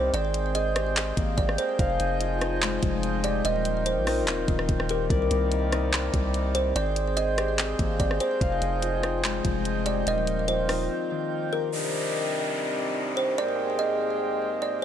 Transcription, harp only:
0.00 0.96 C4 medium
0.00 2.11 D4 medium
0.00 1.81 D#4 loud
0.00 1.02 A#4 medium
0.00 0.13 C5 medium
0.00 0.32 D5 loud
0.13 2.11 C5 loud
0.55 2.83 G#4 medium
0.75 2.68 G4 medium
0.97 3.97 C4 medium
1.17 4.39 A#3 medium
1.58 3.70 A#4 medium
1.80 3.46 F5 loud
2.21 3.86 F4 medium
2.41 4.06 D#4 loud
2.62 3.50 G#3 medium
2.83 3.50 F3 medium
3.24 4.89 G4 loud
3.45 5.15 D#5 loud
3.86 6.38 F4 medium
4.07 5.15 D#4 loud
4.28 6.13 C4 medium
4.49 5.15 D#3 medium
4.90 7.23 G4 medium
5.09 6.94 D5 loud
5.52 7.64 A#4 medium
5.72 8.43 D#4 loud
5.94 8.73 D4 medium
6.14 7.58 C4 medium
6.55 6.75 C5 medium
6.76 8.74 C5 loud
7.17 9.45 G#4 medium
7.38 9.30 G4 medium
7.59 10.59 C4 medium
7.79 11.01 A#3 medium
8.20 10.32 A#4 medium
8.42 10.08 F5 loud
8.82 10.48 F4 medium
9.03 10.68 D#4 loud
9.24 10.12 G#3 medium
9.45 10.12 F3 medium
9.86 11.51 G4 medium
10.07 11.85 D#5 loud
10.48 13.01 F4 medium
10.68 13.39 D#4 loud
10.89 13.89 C4 medium
11.11 11.77 D#3 medium
11.52 13.87 G4 medium

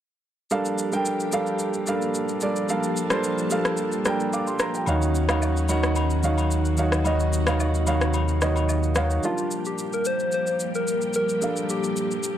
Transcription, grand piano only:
0.51 0.84 G3 medium
0.51 0.84 D4 medium
0.51 0.84 A4 medium
0.51 0.84 A#4 medium
0.51 0.84 F5 medium
0.92 1.25 G3 medium
0.92 1.25 D4 medium
0.92 1.25 A4 medium
0.92 1.25 A#4 medium
0.92 1.25 G5 medium
1.33 1.77 G3 medium
1.33 1.77 D4 medium
1.33 1.77 A4 medium
1.33 1.77 A#4 medium
1.33 1.77 F5 medium
1.87 2.31 G3 medium
1.87 2.31 D4 medium
1.87 2.32 A4 medium
1.87 2.32 A#4 medium
1.87 2.32 F5 medium
2.42 2.64 G3 medium
2.42 2.64 D4 medium
2.42 2.64 A4 medium
2.42 2.64 A#4 medium
2.42 2.64 D5 medium
2.69 3.02 G3 medium
2.69 3.02 D4 medium
2.69 3.02 A4 medium
2.69 3.02 A#4 medium
2.69 3.02 F5 medium
3.11 3.43 G3 medium
3.11 3.43 D4 medium
3.11 3.43 A4 medium
3.11 3.43 A#4 medium
3.11 3.44 C5 medium
3.51 3.95 G3 medium
3.51 3.95 D4 medium
3.51 3.95 A4 medium
3.51 3.95 A#4 medium
3.51 3.95 F5 medium
4.06 4.49 G3 medium
4.06 4.50 D4 medium
4.06 4.50 A4 medium
4.06 4.50 A#4 medium
4.06 4.33 G5 medium
4.06 4.31 A#5 medium
4.33 4.84 F5 medium
4.33 4.46 D6 medium
4.47 4.59 C6 medium
4.61 4.74 A#5 medium
4.75 5.00 G5 medium
4.87 5.20 D#3 medium
4.87 5.20 D#4 medium
4.87 5.20 F#4 medium
4.87 5.20 C#5 medium
4.87 5.21 F5 medium
5.29 5.61 D#3 medium
5.29 5.61 D#4 medium
5.29 5.61 F#4 medium
5.29 5.61 C#5 medium
5.29 5.62 F5 medium
5.69 6.13 D#3 medium
5.69 6.13 D#4 medium
5.69 6.13 F#4 medium
5.69 6.13 C#5 medium
5.69 6.14 F#5 medium
6.23 6.68 D#3 medium
6.23 6.68 D#4 medium
6.23 6.68 F#4 medium
6.23 6.68 C#5 medium
6.23 6.68 F5 medium
6.78 7.00 D#3 medium
6.78 7.00 D#4 medium
6.78 7.00 F#4 medium
6.78 7.00 C#5 medium
6.78 7.01 F5 medium
7.05 7.38 D#3 medium
7.05 7.38 D#4 medium
7.05 7.38 F#4 medium
7.05 7.39 C#5 medium
7.05 7.39 D#5 medium
7.47 7.79 D#3 medium
7.47 7.79 D#4 medium
7.47 7.80 F#4 medium
7.47 7.80 C#5 medium
7.47 7.80 F5 medium
7.87 8.31 D#3 medium
7.87 8.31 D#4 medium
7.87 8.31 F#4 medium
7.87 8.31 C#5 medium
7.87 8.32 F5 loud
8.42 8.86 D#3 medium
8.42 8.86 D#4 medium
8.42 8.86 F#4 medium
8.42 8.86 C#5 medium
8.42 8.86 D#5 medium
8.96 9.18 D#3 medium
8.96 9.18 D#4 medium
8.96 9.18 F#4 medium
8.96 9.19 C#5 medium
8.96 9.19 F5 medium
9.23 11.37 G3 medium
9.23 11.38 D4 medium
9.23 11.38 A#4 medium
9.23 11.38 F5 medium
9.23 11.38 A5 medium
11.41 12.38 G3 medium
11.41 12.38 D4 medium
11.41 12.38 A4 medium
11.41 12.38 A#4 medium
11.41 12.38 F5 medium

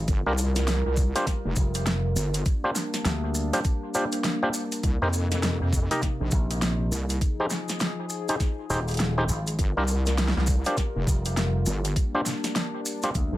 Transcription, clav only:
0.26 0.33 D4 loud
0.26 0.33 F4 loud
0.26 0.33 G4 loud
0.26 0.33 A#4 loud
1.15 1.26 D4 medium
1.15 1.26 F4 medium
1.15 1.26 G4 medium
1.15 1.26 C5 loud
2.64 2.70 D4 loud
2.64 2.70 F4 medium
2.64 2.70 G4 medium
2.64 2.70 C5 loud
3.53 3.60 D4 medium
3.53 3.60 F4 medium
3.53 3.60 G4 medium
3.53 3.59 C5 loud
3.95 4.04 D4 medium
3.95 4.04 F4 medium
3.95 4.04 G4 medium
3.95 4.05 C5 loud
4.43 4.49 D4 loud
4.43 4.49 F4 medium
4.43 4.49 G4 medium
4.43 4.49 C5 loud
5.02 5.08 D#4 loud
5.02 5.08 G4 medium
5.02 5.08 A#4 medium
5.02 5.08 C5 loud
5.91 6.01 D#4 medium
5.91 6.01 G4 medium
5.91 6.01 A#4 medium
5.91 6.01 D#5 loud
7.40 7.46 D#4 loud
7.40 7.46 G4 medium
7.40 7.46 G#4 medium
7.40 7.46 C5 loud
8.29 8.35 D#4 medium
8.29 8.35 G4 medium
8.29 8.35 G#4 medium
8.29 8.35 C5 loud
8.70 8.80 D#4 loud
8.70 8.80 G4 medium
8.70 8.80 G#4 medium
8.70 8.80 C5 loud
9.18 9.24 D#4 loud
9.18 9.24 G4 medium
9.18 9.24 G#4 medium
9.18 9.24 C5 loud
9.77 9.83 D4 loud
9.77 9.83 F4 medium
9.77 9.83 G4 medium
9.77 9.83 A#4 loud
10.66 10.76 D4 medium
10.66 10.76 F4 medium
10.66 10.76 G4 medium
10.66 10.76 C5 loud
12.15 12.21 D4 loud
12.15 12.21 F4 medium
12.15 12.21 G4 medium
12.15 12.21 C5 loud
13.03 13.10 D4 medium
13.03 13.10 F4 medium
13.03 13.10 G4 medium
13.03 13.10 C5 loud

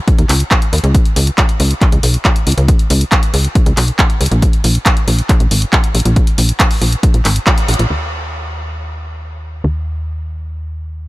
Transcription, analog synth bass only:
0.18 0.26 D#2 medium
0.29 0.44 C#2 medium
0.73 0.80 D#2 medium
0.84 0.98 C#2 loud
1.16 1.30 C#2 loud
1.60 1.74 C#2 medium
1.92 1.99 C#2 medium
2.03 2.17 B1 medium
2.47 2.54 C#2 medium
2.58 2.72 C#2 loud
2.90 3.04 C#2 loud
3.34 3.48 C#2 medium
3.66 3.73 C#2 medium
3.77 3.91 B1 medium
4.21 4.28 C#2 medium
4.31 4.46 A#1 loud
4.64 4.78 A#1 loud
5.08 5.22 A#1 medium
5.40 5.47 A#1 medium
5.51 5.65 G#1 medium
5.95 6.02 A#1 medium
6.05 6.20 A#1 loud
6.38 6.52 A#1 loud
6.81 6.96 A#1 medium
7.14 7.21 A#1 medium
7.25 7.39 G#1 medium
7.68 7.76 A#1 medium
7.79 7.86 A#1 medium
7.90 9.62 D#2 medium
9.64 11.08 D#2 medium

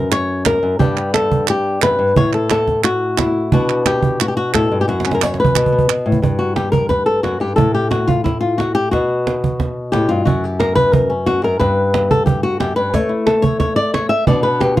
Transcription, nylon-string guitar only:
0.00 0.61 F#2 medium
0.00 0.12 A#4 medium
0.12 0.46 C#5 loud
0.46 0.79 A#4 medium
0.63 0.79 F#2 medium
0.79 1.82 G2 medium
0.79 2.14 G3 soft
0.79 0.96 B3 soft
0.79 2.15 D4 soft
0.79 1.13 G4 medium
0.97 2.14 B3 soft
1.14 1.48 A4 medium
1.50 1.82 G4 medium
1.82 1.98 F#2 medium
1.82 2.17 B4 loud
1.99 2.16 G2 medium
2.16 3.50 A2 medium
2.16 2.34 C#5 loud
2.34 2.50 A4 medium
2.51 2.84 A4 medium
2.84 3.52 F#4 medium
3.17 3.52 E4 medium
3.52 4.88 B2 medium
3.52 4.87 B3 soft
3.52 4.87 D4 soft
3.52 3.86 F#4 medium
3.86 4.20 G4 medium
4.22 4.28 F#4 medium
4.28 4.35 G4 medium
4.37 4.54 F#4 medium
4.54 4.71 A2 medium
4.54 4.80 A4 medium
4.72 4.87 G2 medium
4.81 4.88 G4 medium
4.88 5.56 F#2 medium
4.88 5.14 F#4 medium
5.06 5.54 C#4 soft
5.14 5.23 A#4 medium
5.23 5.39 C#5 loud
5.40 6.24 B4 medium
5.56 5.89 B2 medium
5.72 6.21 B3 soft
5.90 6.07 B2 medium
6.06 6.22 A2 medium
6.22 7.23 G2 medium
6.39 6.55 F#4 medium
6.56 6.71 G4 medium
6.72 6.89 A#4 medium
6.89 7.06 B4 medium
7.06 7.23 A4 medium
7.23 7.40 F#2 medium
7.23 7.40 F#4 medium
7.40 7.56 G2 medium
7.40 7.55 G4 medium
7.56 8.90 A2 medium
7.56 7.74 A4 medium
7.75 7.90 G4 medium
7.91 8.08 F#4 medium
8.07 8.24 F4 medium
8.24 8.40 E4 medium
8.41 8.58 F4 medium
8.58 8.74 F#4 medium
8.75 8.91 G4 loud
8.91 10.26 B2 medium
8.91 9.59 F#4 medium
9.92 10.10 A2 medium
9.92 10.09 G4 medium
10.09 10.26 G2 medium
10.09 10.26 F4 medium
10.25 11.42 F#2 medium
10.25 10.43 F#4 medium
10.44 10.60 G4 medium
10.60 10.75 A#4 medium
10.75 10.93 B4 loud
10.93 11.10 A#4 medium
11.10 11.27 C#4 medium
11.26 11.43 F#4 medium
11.43 11.60 F#2 medium
11.43 11.59 A#4 medium
11.59 12.60 G2 medium
11.59 12.10 B4 medium
12.11 12.25 A4 medium
12.26 12.43 G4 medium
12.43 12.60 F#4 medium
12.60 12.77 F#2 medium
12.60 12.76 G4 medium
12.76 12.94 G2 medium
12.76 12.94 B4 loud
12.94 14.25 A3 medium
12.94 13.11 C#5 loud
13.09 13.27 E4 soft
13.26 13.44 A4 medium
13.42 13.58 C#5 loud
13.60 13.76 C#5 medium
13.76 13.93 D5 loud
13.94 14.09 C#5 loud
14.09 14.27 E5 loud
14.27 14.80 B2 medium
14.27 14.80 B3 medium
14.27 14.80 D4 soft
14.27 14.43 D5 medium
14.43 14.60 B4 medium
14.60 14.77 G4 loud

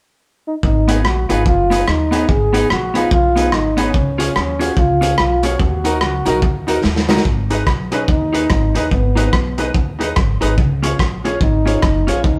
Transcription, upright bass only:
0.64 1.05 G#1 medium
1.05 1.27 A#1 medium
1.31 1.46 G#1 medium
1.46 1.81 F#1 loud
1.88 2.23 D#2 medium
2.29 2.64 G#1 medium
2.71 3.06 A#1 medium
3.12 3.54 B1 medium
3.54 3.89 G#1 medium
3.94 4.30 C#2 loud
4.36 4.71 D#2 medium
4.77 5.12 C#2 loud
5.20 5.54 B1 medium
5.60 6.02 D#2 loud
6.02 6.23 C#2 medium
6.27 6.40 B1 loud
6.42 6.78 D#2 loud
6.84 7.19 D#2 medium
7.26 7.61 G#1 medium
7.67 8.02 B1 medium
8.08 8.44 D#2 loud
8.51 8.72 G#1 loud
8.92 9.27 G#1 loud
9.33 9.68 B1 medium
9.75 10.10 D#2 medium
10.17 10.38 G#1 medium
10.42 10.56 G#1 medium
10.58 10.93 C#2 loud
11.00 11.35 A#1 medium
11.41 11.76 G#1 loud
11.83 12.04 F#1 medium
12.08 12.22 A#1 medium
12.24 12.39 D#2 loud

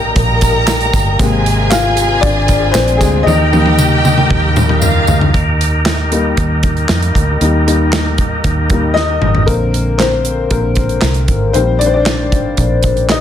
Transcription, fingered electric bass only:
0.00 0.12 A#1 loud
0.16 0.90 A#1 loud
0.94 1.18 G1 medium
1.20 2.19 G#1 loud
2.23 2.71 G#1 loud
2.74 2.99 A#1 medium
3.01 3.25 D2 medium
3.26 4.26 D#2 loud
4.31 5.04 D#2 loud
5.08 5.32 D2 medium
5.34 6.33 D#2 medium
6.38 6.86 D#2 loud
6.90 7.13 F2 medium
7.15 7.39 D2 medium
7.41 8.40 D#2 loud
8.44 9.18 D#2 medium
9.22 9.46 G#1 medium
9.48 10.47 A#1 loud
10.51 10.99 A#1 medium
11.03 11.27 C2 medium
11.28 11.53 G#1 medium
11.55 12.54 A#1 medium
12.58 13.21 A#1 medium

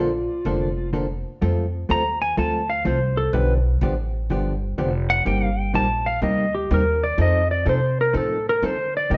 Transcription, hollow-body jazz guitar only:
0.46 0.68 D3 medium
0.46 0.68 F3 medium
0.46 0.68 A#3 medium
0.46 0.69 D4 medium
0.46 0.69 A4 medium
0.93 1.05 D3 medium
0.93 1.05 F3 medium
0.93 1.05 A#3 medium
0.93 1.05 D4 medium
0.93 1.05 A4 medium
1.42 1.64 F3 medium
1.42 1.64 A3 medium
1.42 1.65 C4 medium
1.42 1.65 F4 medium
1.42 1.65 A4 medium
1.89 2.01 F3 medium
1.89 2.01 A3 medium
1.89 2.02 C4 medium
1.89 2.02 F4 medium
1.89 2.02 A4 medium
2.37 2.60 F3 medium
2.37 2.60 A3 medium
2.37 2.60 C4 medium
2.37 2.61 F4 medium
2.37 2.61 A4 medium
2.85 2.97 F3 medium
2.85 2.97 A3 medium
2.85 2.98 C4 medium
2.85 2.98 F4 medium
2.85 2.98 A4 medium
3.34 3.57 D3 medium
3.34 3.57 F3 medium
3.34 3.57 B3 medium
3.34 3.57 D4 medium
3.34 3.57 G4 medium
3.82 3.94 D3 medium
3.82 3.94 F3 medium
3.82 3.94 B3 medium
3.82 3.94 D4 medium
3.82 3.94 G4 medium
4.30 4.53 D3 medium
4.30 4.53 F3 medium
4.30 4.53 B3 medium
4.30 4.53 D4 medium
4.30 4.53 G4 medium
4.78 4.90 D3 medium
4.78 4.90 F3 medium
4.78 4.90 B3 medium
4.78 4.90 D4 medium
4.78 4.90 G4 medium
5.25 5.48 C3 medium
5.25 5.49 G3 medium
5.25 5.49 A#3 medium
5.25 5.49 D#4 medium
5.25 5.49 G4 medium
5.74 5.86 C3 medium
5.74 5.86 G3 medium
5.74 5.86 A#3 medium
5.74 5.86 D#4 medium
5.74 5.86 G4 medium
6.22 6.45 C3 medium
6.22 6.45 G3 medium
6.22 6.45 A#3 medium
6.22 6.45 D#4 medium
6.22 6.45 G4 medium
6.71 6.82 C3 medium
6.71 6.83 G3 medium
6.71 6.83 A#3 medium
6.71 6.83 D#4 medium
6.71 6.83 G4 medium
7.18 7.41 F3 medium
7.18 7.41 C4 medium
7.18 7.41 D#4 medium
7.18 7.41 A4 medium
7.66 7.78 F3 medium
7.66 7.78 C4 medium
7.66 7.79 D#4 medium
7.66 7.79 A4 medium
8.13 8.37 F3 medium
8.13 8.37 C4 medium
8.13 8.37 D#4 medium
8.13 8.37 A4 medium
8.63 8.75 F3 medium
8.63 8.75 C4 medium
8.63 8.75 D#4 medium
8.63 8.75 A4 medium
9.10 9.17 C3 medium
9.10 9.17 G3 medium
9.10 9.17 A#3 medium
9.10 9.17 D#4 medium
9.10 9.17 G4 medium

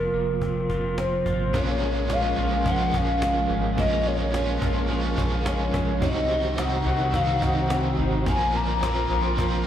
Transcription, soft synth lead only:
0.00 0.99 A#4 medium
1.00 1.59 C5 medium
1.57 2.14 C#5 loud
2.13 2.39 F5 loud
2.42 2.72 F5 loud
2.71 2.99 F#5 loud
2.97 3.52 F5 loud
3.79 4.08 D#5 loud
4.07 5.19 C#5 loud
5.46 6.04 C#5 medium
6.02 6.60 D#5 loud
6.58 6.86 F#5 loud
6.87 7.16 F#5 loud
7.15 7.44 F5 loud
7.42 7.99 F#5 loud
8.28 8.57 G#5 loud
8.56 9.67 A#5 loud

